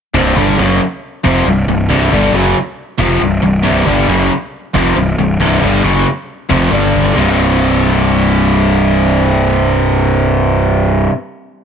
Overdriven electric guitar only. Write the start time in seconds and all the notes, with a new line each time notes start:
0.14 C2 G2 C3
0.36 G2 D3 G3
0.58 F#2 C#3 F#3
1.24 F2 C3 F3
1.46 C2 G2
1.69 C2 G2
1.89 C2 G2 C3
2.12 G2 D3 G3
2.34 F#2 C#3 F#3
2.99 F2 C3 F3
3.21 C2 G2
3.43 C2 G2
3.63 C2 G2 C3
3.86 G2 D3 G3
4.08 F#2 C#3 F#3
4.74 F2 C3 F3
4.96 C2 G2
5.19 C2 G2
5.40 C2 G2 C3
5.61 G2 D3 G3
5.83 F#2 C#3 F#3
6.49 F2 C3 F3
6.71 G2 D3 G3
7.14 C2 G2 C3